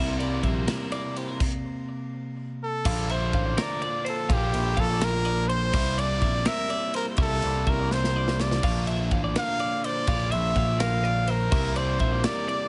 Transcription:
Already playing: picked electric bass C2, overdriven electric guitar C3 G3 A#3, clean electric guitar C3 G3 A#3 E5
0.00 clean electric guitar E4 A#4, overdriven electric guitar E4
0.19 clean electric guitar G3 D5, ride
0.43 picked electric bass A#1, clean electric guitar A#3 E5, kick, ride
0.55 clean electric guitar C5
0.67 clean electric guitar E4 A#4, snare, ride
0.91 clean electric guitar A#3 D5, ride
1.16 clean electric guitar G4 C5, ride
1.28 clean electric guitar A#4
1.40 kick, crash
2.63 trumpet A4
2.85 picked electric bass A#1, overdriven electric guitar A#2 D3 F3 A#3, clean electric guitar F5, kick, crash
2.89 overdriven electric guitar D4
3.09 trumpet C5, clean electric guitar E5, ride
3.33 picked electric bass A1, clean electric guitar F5, kick, ride
3.46 clean electric guitar D5
3.57 clean electric guitar A#4, snare, ride
3.61 trumpet D5
3.82 clean electric guitar D5, ride
4.05 trumpet A4, clean electric guitar C5, ride
4.29 picked electric bass A#1, overdriven electric guitar A#2 D3 F3 A#3 D4, clean electric guitar F5, kick, ride
4.33 trumpet G4
4.53 picked electric bass A#1, clean electric guitar E5, ride
4.77 picked electric bass A#1, trumpet A4, clean electric guitar F5, kick, ride
4.90 clean electric guitar D5
5.01 clean electric guitar A#4, trumpet A#4, snare, ride
5.25 clean electric guitar D5, ride
5.48 trumpet C5, clean electric guitar C5, ride
5.72 picked electric bass C2, overdriven electric guitar C3 G3 A#3 E4, clean electric guitar E5, kick, crash
5.98 clean electric guitar D5, trumpet D5, ride
6.22 picked electric bass A#1, clean electric guitar E5, kick, ride
6.35 clean electric guitar D5
6.45 clean electric guitar A#4, trumpet E5, snare, ride
6.70 clean electric guitar D5, ride
6.94 trumpet A#4, clean electric guitar C5, ride
7.17 picked electric bass C2, overdriven electric guitar C3 G3 A#3, clean electric guitar E5, kick, ride
7.21 overdriven electric guitar E4, trumpet A4
7.42 picked electric bass C2, clean electric guitar D5, ride
7.67 picked electric bass C2, trumpet A#4, clean electric guitar E5, kick, ride
7.79 clean electric guitar D5
7.91 clean electric guitar A#4, trumpet C5, snare
8.04 snare
8.16 clean electric guitar D5
8.28 snare
8.40 clean electric guitar C5, trumpet D5, snare
8.51 snare
8.63 picked electric bass A#1, overdriven electric guitar A#2 D3 F3 A#3 D4, clean electric guitar F5, kick, crash
8.87 clean electric guitar E5, ride
9.11 picked electric bass A1, clean electric guitar F5, kick, ride
9.24 clean electric guitar D5
9.36 clean electric guitar A#4, trumpet F5, snare, ride
9.59 clean electric guitar D5, ride
9.84 clean electric guitar C5, trumpet D5, ride
10.07 picked electric bass A#1, overdriven electric guitar A#2 D3 F3 A#3 D4, clean electric guitar F5, kick, ride
10.31 picked electric bass A#1, clean electric guitar E5, trumpet E5, ride
10.56 picked electric bass A#1, clean electric guitar F5, kick, ride
10.68 clean electric guitar D5
10.80 clean electric guitar A#4, trumpet F5, snare, ride
11.04 clean electric guitar D5, ride
11.28 trumpet A#4, clean electric guitar C5, ride
11.51 picked electric bass C2, overdriven electric guitar C3 G3 A#3 E4, clean electric guitar E5, kick, crash
11.76 trumpet C5, clean electric guitar D5, ride
11.99 picked electric bass A#1, clean electric guitar E5, kick, ride
12.12 clean electric guitar D5
12.24 clean electric guitar A#4, trumpet D5, snare, ride
12.48 clean electric guitar D5, ride

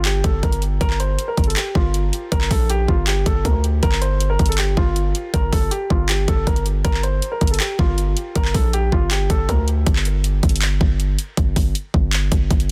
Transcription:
Already playing: 808-style bass G1
0.05 grand piano G4, clap, closed hi-hat
0.24 808-style bass G1, grand piano A4, kick, closed hi-hat
0.43 808-style bass G1, grand piano A#4, kick, closed hi-hat
0.52 closed hi-hat
0.62 closed hi-hat
0.81 808-style bass G1, grand piano A#4, kick, closed hi-hat
0.90 clap
1.00 grand piano C5, closed hi-hat
1.19 closed hi-hat
1.28 grand piano A#4
1.37 808-style bass G1, kick, closed hi-hat
1.44 grand piano A4, closed hi-hat
1.50 closed hi-hat
1.56 grand piano G4, clap, closed hi-hat
1.75 808-style bass G1, grand piano F4, kick
1.94 closed hi-hat
2.13 closed hi-hat
2.32 808-style bass G1, grand piano A#4, kick, closed hi-hat
2.41 clap
2.51 808-style bass A#1, grand piano A4, kick, open hi-hat
2.70 grand piano G4, closed hi-hat
2.88 808-style bass G1, grand piano F4, kick
3.07 grand piano G4, clap, closed hi-hat
3.26 808-style bass G1, grand piano A4, kick, closed hi-hat
3.45 808-style bass D2, grand piano A#4, kick, closed hi-hat
3.64 closed hi-hat
3.83 808-style bass G1, grand piano A#4, kick, closed hi-hat
3.92 clap
4.01 grand piano C5, closed hi-hat
4.20 closed hi-hat
4.30 grand piano A#4
4.39 808-style bass G1, kick, closed hi-hat
4.46 grand piano A4, closed hi-hat
4.52 closed hi-hat
4.58 grand piano G4, clap, closed hi-hat
4.77 808-style bass G1, grand piano F4, kick
4.96 closed hi-hat
5.15 closed hi-hat
5.34 808-style bass G1, grand piano A#4, kick, closed hi-hat
5.52 808-style bass G1, grand piano A4, kick, open hi-hat
5.71 grand piano G4, closed hi-hat
5.90 808-style bass G1, grand piano F4, kick
6.09 grand piano G4, clap, closed hi-hat
6.28 808-style bass G1, grand piano A4, kick, closed hi-hat
6.47 808-style bass G1, grand piano A#4, kick, closed hi-hat
6.56 closed hi-hat
6.66 closed hi-hat
6.84 808-style bass G1, grand piano A#4, kick, closed hi-hat
6.94 clap
7.03 grand piano C5, closed hi-hat
7.22 closed hi-hat
7.32 grand piano A#4
7.41 808-style bass G1, kick, closed hi-hat
7.47 grand piano A4, closed hi-hat
7.54 closed hi-hat
7.60 grand piano G4, clap, closed hi-hat
7.79 808-style bass G1, grand piano F4, kick
7.98 closed hi-hat
8.17 closed hi-hat
8.35 808-style bass G1, grand piano A#4, kick, closed hi-hat
8.45 clap
8.54 808-style bass A#1, grand piano A4, kick, open hi-hat
8.73 grand piano G4, closed hi-hat
8.92 808-style bass G1, grand piano F4, kick
9.11 grand piano G4, clap, closed hi-hat
9.30 808-style bass G1, grand piano A4, kick, closed hi-hat
9.49 808-style bass D2, grand piano A#4, kick, closed hi-hat
9.68 closed hi-hat
9.86 808-style bass G1, kick, closed hi-hat
9.96 clap
10.05 closed hi-hat
10.24 closed hi-hat
10.43 808-style bass G1, kick, closed hi-hat
10.49 closed hi-hat
10.56 closed hi-hat
10.62 clap, closed hi-hat
10.81 808-style bass G1, kick
11.00 closed hi-hat
11.19 closed hi-hat
11.37 808-style bass G1, kick, closed hi-hat
11.56 808-style bass G1, kick, open hi-hat
11.75 closed hi-hat
11.94 808-style bass G1, kick
12.13 clap, closed hi-hat
12.32 808-style bass G1, kick, closed hi-hat
12.51 808-style bass G1, kick, closed hi-hat
12.60 closed hi-hat

